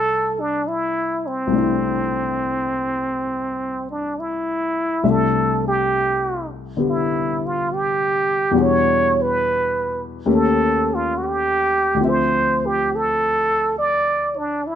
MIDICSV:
0, 0, Header, 1, 3, 480
1, 0, Start_track
1, 0, Key_signature, 0, "major"
1, 0, Tempo, 875912
1, 828, Time_signature, 4, 2, 24, 8
1, 4674, Tempo, 863309
1, 8134, End_track
2, 0, Start_track
2, 0, Title_t, "Muted trumpet"
2, 0, Program_c, 0, 59
2, 0, Note_on_c, 0, 69, 85
2, 220, Note_on_c, 0, 62, 69
2, 228, Note_off_c, 0, 69, 0
2, 371, Note_on_c, 0, 64, 72
2, 379, Note_off_c, 0, 62, 0
2, 695, Note_on_c, 0, 60, 66
2, 703, Note_off_c, 0, 64, 0
2, 2125, Note_off_c, 0, 60, 0
2, 2141, Note_on_c, 0, 62, 52
2, 2298, Note_on_c, 0, 64, 65
2, 2307, Note_off_c, 0, 62, 0
2, 2794, Note_on_c, 0, 69, 81
2, 2802, Note_off_c, 0, 64, 0
2, 3098, Note_off_c, 0, 69, 0
2, 3112, Note_on_c, 0, 67, 78
2, 3553, Note_off_c, 0, 67, 0
2, 3777, Note_on_c, 0, 64, 65
2, 4089, Note_on_c, 0, 65, 67
2, 4097, Note_off_c, 0, 64, 0
2, 4237, Note_on_c, 0, 67, 80
2, 4245, Note_off_c, 0, 65, 0
2, 4723, Note_on_c, 0, 73, 85
2, 4732, Note_off_c, 0, 67, 0
2, 5056, Note_on_c, 0, 71, 77
2, 5065, Note_off_c, 0, 73, 0
2, 5509, Note_off_c, 0, 71, 0
2, 5684, Note_on_c, 0, 69, 71
2, 6018, Note_on_c, 0, 65, 64
2, 6026, Note_off_c, 0, 69, 0
2, 6147, Note_on_c, 0, 66, 48
2, 6155, Note_off_c, 0, 65, 0
2, 6176, Note_on_c, 0, 67, 86
2, 6184, Note_off_c, 0, 66, 0
2, 6655, Note_on_c, 0, 72, 86
2, 6663, Note_off_c, 0, 67, 0
2, 6971, Note_on_c, 0, 67, 81
2, 6979, Note_off_c, 0, 72, 0
2, 7135, Note_on_c, 0, 69, 87
2, 7143, Note_off_c, 0, 67, 0
2, 7583, Note_off_c, 0, 69, 0
2, 7597, Note_on_c, 0, 74, 92
2, 7925, Note_on_c, 0, 62, 72
2, 7933, Note_off_c, 0, 74, 0
2, 8089, Note_on_c, 0, 64, 78
2, 8097, Note_off_c, 0, 62, 0
2, 8134, Note_off_c, 0, 64, 0
2, 8134, End_track
3, 0, Start_track
3, 0, Title_t, "Grand piano"
3, 0, Program_c, 1, 0
3, 0, Control_c, 1, 64, 127
3, 0, Note_on_c, 1, 36, 41
3, 0, Note_on_c, 1, 48, 37
3, 0, Note_on_c, 1, 57, 38
3, 0, Note_on_c, 1, 62, 34
3, 0, Note_on_c, 1, 64, 47
3, 798, Note_off_c, 1, 36, 0
3, 806, Note_on_c, 1, 36, 42
3, 810, Note_off_c, 1, 48, 0
3, 818, Note_on_c, 1, 48, 39
3, 827, Note_off_c, 1, 57, 0
3, 835, Note_on_c, 1, 57, 37
3, 838, Note_off_c, 1, 62, 0
3, 845, Note_off_c, 1, 64, 0
3, 849, Note_on_c, 1, 62, 37
3, 864, Note_on_c, 1, 64, 42
3, 2748, Note_off_c, 1, 36, 0
3, 2753, Note_off_c, 1, 48, 0
3, 2754, Note_off_c, 1, 57, 0
3, 2755, Note_off_c, 1, 62, 0
3, 2758, Note_on_c, 1, 36, 43
3, 2761, Note_on_c, 1, 48, 44
3, 2761, Note_on_c, 1, 76, 50
3, 2762, Note_on_c, 1, 57, 39
3, 2763, Note_on_c, 1, 62, 43
3, 2767, Control_c, 1, 64, 0
3, 2777, Note_off_c, 1, 64, 0
3, 2870, Control_c, 1, 64, 127
3, 3709, Note_on_c, 1, 50, 37
3, 3715, Note_on_c, 1, 59, 31
3, 3725, Note_on_c, 1, 67, 39
3, 4664, Note_on_c, 1, 40, 47
3, 4670, Note_off_c, 1, 50, 0
3, 4671, Note_on_c, 1, 47, 41
3, 4672, Note_off_c, 1, 59, 0
3, 4674, Note_off_c, 1, 36, 0
3, 4675, Note_off_c, 1, 48, 0
3, 4675, Note_off_c, 1, 76, 0
3, 4676, Note_off_c, 1, 57, 0
3, 4676, Note_off_c, 1, 62, 0
3, 4678, Note_off_c, 1, 67, 0
3, 4678, Note_on_c, 1, 55, 44
3, 4682, Control_c, 1, 64, 0
3, 4685, Note_on_c, 1, 62, 41
3, 4693, Note_on_c, 1, 66, 51
3, 4787, Control_c, 1, 64, 127
3, 5633, Note_off_c, 1, 40, 0
3, 5635, Note_on_c, 1, 39, 52
3, 5636, Note_on_c, 1, 51, 47
3, 5636, Note_on_c, 1, 61, 42
3, 5637, Note_off_c, 1, 47, 0
3, 5639, Note_on_c, 1, 57, 47
3, 5640, Note_off_c, 1, 55, 0
3, 5643, Note_on_c, 1, 67, 51
3, 5644, Note_off_c, 1, 62, 0
3, 5644, Control_c, 1, 64, 0
3, 5648, Note_off_c, 1, 66, 0
3, 5726, Control_c, 1, 64, 127
3, 6572, Note_on_c, 1, 38, 43
3, 6584, Note_on_c, 1, 50, 37
3, 6594, Note_off_c, 1, 39, 0
3, 6594, Note_off_c, 1, 51, 0
3, 6594, Note_off_c, 1, 61, 0
3, 6596, Note_off_c, 1, 57, 0
3, 6598, Note_off_c, 1, 67, 0
3, 6603, Control_c, 1, 64, 0
3, 6604, Note_on_c, 1, 53, 40
3, 6612, Note_on_c, 1, 60, 37
3, 6629, Note_on_c, 1, 76, 46
3, 6705, Control_c, 1, 64, 127
3, 8134, Note_off_c, 1, 38, 0
3, 8134, Note_off_c, 1, 50, 0
3, 8134, Note_off_c, 1, 53, 0
3, 8134, Note_off_c, 1, 60, 0
3, 8134, Note_off_c, 1, 76, 0
3, 8134, End_track
0, 0, End_of_file